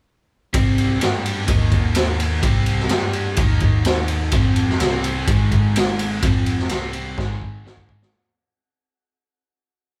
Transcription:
0.53 picked electric bass C2, overdriven electric guitar C3 G3 C4, kick, ride
0.78 ride
0.99 picked electric bass G2, overdriven electric guitar G3 D4 G4, snare, ride
1.26 ride
1.47 picked electric bass D#2, overdriven electric guitar D#3 A#3 D#4, kick, ride
1.72 kick, ride
1.95 snare, ride
2.20 ride
2.42 picked electric bass C2, overdriven electric guitar C3 G3 C4, kick, ride
2.66 ride
2.80 snare
2.89 picked electric bass G2, overdriven electric guitar G3 D4 G4, snare, ride
3.13 ride
3.36 picked electric bass D#2, overdriven electric guitar D#3 A#3 D#4, kick, ride
3.60 kick, ride
3.85 snare, ride
4.08 ride
4.32 picked electric bass F1, overdriven electric guitar F2 C3 F3, kick, ride
4.56 ride
4.70 snare
4.79 picked electric bass C2, overdriven electric guitar C3 G3 C4, snare, ride
5.04 ride
5.27 picked electric bass G#1, overdriven electric guitar G#2 D#3 G#3, kick, ride
5.52 kick, ride
5.76 snare, ride
5.99 ride
6.22 picked electric bass F1, overdriven electric guitar F2 C3 F3, kick, ride
6.46 ride
6.59 snare
6.69 picked electric bass C2, overdriven electric guitar C3 G3 C4, snare, ride
6.93 ride
7.18 picked electric bass G#1, overdriven electric guitar G#2 D#3 G#3, kick, snare
7.42 kick
7.64 picked electric bass G#1, overdriven electric guitar G#2 D#3 G#3, snare
7.77 kick
7.89 kick
8.02 snare

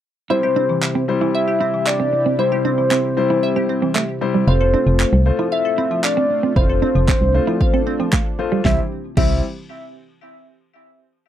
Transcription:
0.30 analog synth pad C3 C4 E4 G4, grand piano G3 E4 C5, clean electric guitar E4, soft synth lead C5, synth pluck E5
0.43 grand piano G3 E4 C5, synth pluck G4
0.56 synth pluck C4, clean electric guitar D4
0.69 synth pluck E3, muted clean electric guitar stroke
0.82 synth pluck E5, clap
0.95 clean electric guitar C4
1.08 grand piano G3 E4 C5, muted clean electric guitar stroke
1.21 synth pluck E3, clean electric guitar E4
1.35 synth pluck E5, soft synth lead E5
1.48 synth pluck G4
1.61 synth pluck C4, clean electric guitar E4
1.74 synth pluck E3
1.87 soft synth lead D5, synth pluck E5, clap
2.00 clean electric guitar C4
2.13 muted clean electric guitar stroke
2.26 clean electric guitar C4
2.39 grand piano G3 E4 C5, clean electric guitar E4, soft synth lead C5, synth pluck E5
2.52 grand piano G3 E4 C5, synth pluck G4
2.65 synth pluck C4, clean electric guitar D4
2.78 synth pluck E3, muted clean electric guitar stroke
2.91 clean electric guitar C4, synth pluck E5, clap
3.17 grand piano G3 E4 C5, muted clean electric guitar stroke
3.30 synth pluck E3, clean electric guitar E4
3.43 synth pluck E5
3.56 clean electric guitar C4, synth pluck G4
3.69 synth pluck C4, muted clean electric guitar stroke
3.82 synth pluck E3, clean electric guitar C4
3.95 clean electric guitar A3, synth pluck E5, clap
4.21 grand piano G3 E4 C5, muted clean electric guitar stroke
4.34 clean electric guitar G3
4.47 fm bass F1, grand piano A3 F4 C5, analog synth pad A3 F4, clean electric guitar E4, soft synth lead C5, synth pluck F5
4.60 grand piano A3 F4 C5, synth pluck A4
4.74 synth pluck C4, clean electric guitar D4
4.87 fm bass F1, synth pluck F3, muted clean electric guitar stroke
5.00 synth pluck F5, clap
5.13 fm bass C2, clean electric guitar C4
5.25 grand piano A3 F4 C5, muted clean electric guitar stroke
5.39 synth pluck F3, clean electric guitar E4
5.52 soft synth lead E5, synth pluck F5
5.65 synth pluck A4
5.78 synth pluck C4, clean electric guitar E4
5.91 synth pluck F3
6.04 soft synth lead D5, synth pluck F5, clap
6.17 clean electric guitar C4
6.30 muted clean electric guitar stroke
6.43 clean electric guitar C4
6.56 fm bass F1, grand piano A3 F4 C5, analog synth pad D4, clean electric guitar E4, soft synth lead C5, synth pluck F5, kick
6.69 grand piano A3 F4 C5, synth pluck A4
6.82 synth pluck C4, clean electric guitar D4
6.95 fm bass F1, synth pluck F3, muted clean electric guitar stroke
7.08 clean electric guitar C4, synth pluck F5, kick, clap
7.21 fm bass C2
7.34 grand piano A3 F4 C5, muted clean electric guitar stroke
7.47 synth pluck F3, clean electric guitar E4
7.61 synth pluck F5, kick
7.74 clean electric guitar C4, synth pluck A4
7.87 synth pluck C4, muted clean electric guitar stroke
8.00 synth pluck F3, clean electric guitar C4
8.13 clean electric guitar A3, synth pluck F5, kick, clap
8.39 grand piano A3 F4 C5, muted clean electric guitar stroke
8.52 clean electric guitar G3
8.65 fm bass C2, synth pluck E3 C4 G4, clean electric guitar G3, grand piano G3 E4 C5, soft synth lead E5, kick, snare
9.17 fm bass C2, synth pluck E3 C4 G4, clean electric guitar G3, grand piano G3 E4 C5, soft synth lead E5, kick, crash

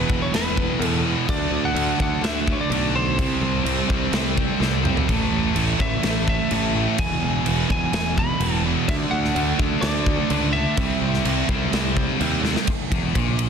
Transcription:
Already playing: lead electric guitar B4
0.09 picked electric bass E1, distorted electric guitar E2 B2 E3, kick
0.22 lead electric guitar C#5
0.32 picked electric bass E1, distorted electric guitar E2 B2 E3, lead electric guitar B4, snare, crash
0.57 kick
0.80 picked electric bass E2, distorted electric guitar E2 B2 E3, crash
0.84 lead electric guitar A4
1.06 distorted electric guitar E2 B2 E3
1.29 picked electric bass D2, distorted electric guitar D3 A3 D4, lead electric guitar D5, kick, crash
1.51 picked electric bass D2
1.65 lead electric guitar F#5
1.75 picked electric bass D2, distorted electric guitar D3 A3 D4, crash
2.00 picked electric bass D2, distorted electric guitar D3 A3 D4, lead electric guitar F#5, kick
2.21 picked electric bass D2, distorted electric guitar D3, lead electric guitar E5, snare, crash
2.25 distorted electric guitar A3 D4
2.48 kick
2.52 lead electric guitar C#5
2.61 lead electric guitar D5
2.70 picked electric bass B1, distorted electric guitar D3 A3 D4, crash
2.95 distorted electric guitar D3 A3 D4, lead electric guitar C5
3.19 picked electric bass C2, distorted electric guitar C3 G3 C4, kick, crash
3.41 picked electric bass C2
3.64 picked electric bass C2, distorted electric guitar C3 G3 C4, crash
3.89 picked electric bass C2, distorted electric guitar C3 G3 C4, kick
4.12 picked electric bass C2, distorted electric guitar C3 G3 C4, snare, crash
4.38 kick
4.60 picked electric bass C2, distorted electric guitar C3 G3 C4, snare
4.83 distorted electric guitar C3 G3 C4, mid tom
4.97 floor tom
5.08 picked electric bass A1, distorted electric guitar A2 E3 A3, kick, crash
5.32 picked electric bass A1
5.55 picked electric bass A1, distorted electric guitar A2 E3 A3, crash
5.78 picked electric bass A1, distorted electric guitar A2 E3 A3, lead electric guitar E5, kick
6.03 picked electric bass A1, distorted electric guitar A2 E3 A3, snare, crash
6.28 lead electric guitar E5, kick
6.51 picked electric bass A1, distorted electric guitar A2 E3 A3, crash
6.75 distorted electric guitar A2 E3 A3
6.98 picked electric bass E1, distorted electric guitar E2 B2 E3, lead electric guitar G#5, kick, crash
7.22 picked electric bass E1
7.46 picked electric bass E1, distorted electric guitar E2 B2 E3, crash
7.70 picked electric bass E1, distorted electric guitar E2 B2 E3, lead electric guitar G#5, kick
7.93 picked electric bass E1, distorted electric guitar E2 B2 E3, lead electric guitar G#5, snare, crash
8.18 lead electric guitar B5, kick
8.40 picked electric bass E1, distorted electric guitar E2 B2 E3, crash
8.66 distorted electric guitar E2 B2 E3
8.88 picked electric bass D2, distorted electric guitar D3 A3 D4, lead electric guitar E5, kick, crash
9.11 picked electric bass D2, lead electric guitar F#5
9.25 snare
9.35 picked electric bass D2, distorted electric guitar D3 A3 D4, crash
9.59 picked electric bass D2, distorted electric guitar D3 A3 D4, kick
9.81 picked electric bass D2, distorted electric guitar D3 A3 D4, lead electric guitar D5, snare, crash
10.06 kick
10.30 picked electric bass C#2, distorted electric guitar D3 A3 D4, crash
10.53 distorted electric guitar D3 A3 D4, lead electric guitar E5
10.77 picked electric bass C2, distorted electric guitar C3 G3 C4, kick, crash
11.01 picked electric bass C2
11.14 snare
11.25 picked electric bass C2, distorted electric guitar C3 G3 C4, crash
11.49 picked electric bass C2, distorted electric guitar C3 G3 C4, kick
11.73 picked electric bass C2, distorted electric guitar C3 G3 C4, snare, crash
11.97 kick
12.19 picked electric bass D#2, distorted electric guitar C3 G3 C4, crash
12.44 distorted electric guitar C3 G3 C4, snare
12.56 snare
12.67 kick, ride
12.91 picked electric bass E1, distorted electric guitar E2, kick, ride
13.15 picked electric bass A#1, distorted electric guitar A#2, kick, ride
13.39 ride

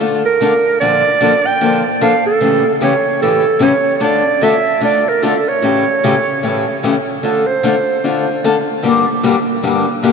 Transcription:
0.00 steel-string acoustic guitar D3 A3 D4 F4 A4
0.26 clarinet A#4
0.41 steel-string acoustic guitar D3 A3 D4 F4 A4
0.81 steel-string acoustic guitar A#2 D3 F3 A#3 D4 A4, clarinet D5
1.20 steel-string acoustic guitar A#2 D3 F3 A#3 D4 A4
1.46 clarinet G5
1.61 steel-string acoustic guitar A#2 D3 F3 A#3 D4 A4
2.01 steel-string acoustic guitar A#2 D3 F3 A#3 D4 A4, clarinet F5
2.27 clarinet A4
2.40 steel-string acoustic guitar A2 C#3 E3 A3 C#4 G4
2.81 steel-string acoustic guitar A2 C#3 E3 A3 C#4 G4, clarinet C#5
3.22 steel-string acoustic guitar A2 C#3 E3 A3 C#4 G4, clarinet A4
3.59 steel-string acoustic guitar A2 C#3 E3 A3 C#4 G4, clarinet C#5
3.96 steel-string acoustic guitar D3 A3 D4, clarinet C#5
4.01 steel-string acoustic guitar F4 A4, clarinet D5
4.41 steel-string acoustic guitar D3 A3 D4 F4 A4, clarinet E5
4.81 steel-string acoustic guitar D3 A3 D4 F4 A4, clarinet D5
5.09 clarinet A#4
5.22 steel-string acoustic guitar D3 A3 D4 F4 A4, clarinet A4
5.48 clarinet C#5
5.62 steel-string acoustic guitar A2 C#3 E3 A3 C#4 G4
6.04 steel-string acoustic guitar A2 C#3 E3 A3 C#4 G4
6.43 steel-string acoustic guitar A2 C#3 E3 A3 C#4 G4
6.83 steel-string acoustic guitar A2 C#3 E3 A3 C#4 G4
7.23 steel-string acoustic guitar D3 A3 D4 F4 A4, clarinet A4
7.47 clarinet C5
7.63 steel-string acoustic guitar D3 A3 D4 F4 A4
8.04 steel-string acoustic guitar D3 A3 D4 F4 A4
8.44 steel-string acoustic guitar D3 A3 D4 F4 A4
8.82 steel-string acoustic guitar G2 D3 G3 A#3 D4 G4
9.23 steel-string acoustic guitar G2 D3 G3 A#3 D4 G4
9.63 steel-string acoustic guitar G2 D3 G3 A#3 D4 G4
10.03 steel-string acoustic guitar G2 D3 G3 A#3 D4 G4

